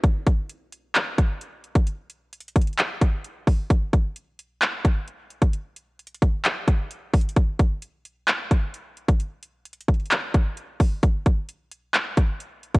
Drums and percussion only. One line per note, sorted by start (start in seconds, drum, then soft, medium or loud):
0.04 kick loud
0.04 closed hi-hat medium
0.27 kick loud
0.27 closed hi-hat medium
0.49 closed hi-hat medium
0.72 closed hi-hat medium
0.95 clap loud
0.95 closed hi-hat medium
1.18 kick medium
1.18 closed hi-hat medium
1.41 closed hi-hat medium
1.64 closed hi-hat soft
1.75 kick loud
1.75 closed hi-hat medium
1.87 closed hi-hat medium
2.10 closed hi-hat medium
2.33 closed hi-hat medium
2.40 closed hi-hat medium
2.48 closed hi-hat medium
2.56 kick medium
2.56 closed hi-hat medium
2.61 closed hi-hat medium
2.67 closed hi-hat medium
2.73 closed hi-hat soft
2.79 clap loud
2.79 closed hi-hat medium
3.01 kick medium
3.01 closed hi-hat medium
3.24 closed hi-hat medium
3.47 kick medium
3.47 open hi-hat medium
3.70 kick loud
3.70 closed hi-hat medium
3.93 kick medium
3.93 closed hi-hat medium
4.16 closed hi-hat medium
4.39 closed hi-hat medium
4.62 clap loud
4.62 closed hi-hat medium
4.85 kick loud
4.85 closed hi-hat medium
5.08 closed hi-hat medium
5.30 closed hi-hat soft
5.42 kick loud
5.42 closed hi-hat medium
5.53 closed hi-hat medium
5.76 closed hi-hat medium
5.99 closed hi-hat soft
6.07 closed hi-hat medium
6.14 closed hi-hat medium
6.22 kick loud
6.22 closed hi-hat medium
6.45 clap loud
6.45 closed hi-hat medium
6.68 kick loud
6.68 closed hi-hat medium
6.91 closed hi-hat medium
7.14 kick medium
7.14 closed hi-hat soft
7.14 open hi-hat medium
7.21 closed hi-hat medium
7.29 closed hi-hat medium
7.36 kick loud
7.36 closed hi-hat medium
7.59 kick loud
7.59 closed hi-hat medium
7.82 closed hi-hat medium
8.05 closed hi-hat medium
8.28 clap loud
8.28 closed hi-hat medium
8.51 kick medium
8.51 closed hi-hat medium
8.74 closed hi-hat medium
8.97 closed hi-hat soft
9.08 kick loud
9.08 closed hi-hat medium
9.20 closed hi-hat medium
9.43 closed hi-hat medium
9.65 closed hi-hat medium
9.73 closed hi-hat medium
9.81 closed hi-hat medium
9.88 kick medium
9.88 closed hi-hat medium
9.94 closed hi-hat medium
10.00 closed hi-hat medium
10.05 closed hi-hat soft
10.11 clap loud
10.11 closed hi-hat medium
10.34 kick loud
10.34 closed hi-hat medium
10.57 closed hi-hat medium
10.80 kick medium
10.80 open hi-hat medium
11.03 kick loud
11.03 closed hi-hat medium
11.26 kick loud
11.26 closed hi-hat medium
11.49 closed hi-hat medium
11.72 closed hi-hat medium
11.94 clap loud
11.94 closed hi-hat medium
12.17 kick loud
12.17 closed hi-hat medium
12.40 closed hi-hat medium
12.63 closed hi-hat soft
12.75 kick loud
12.75 closed hi-hat medium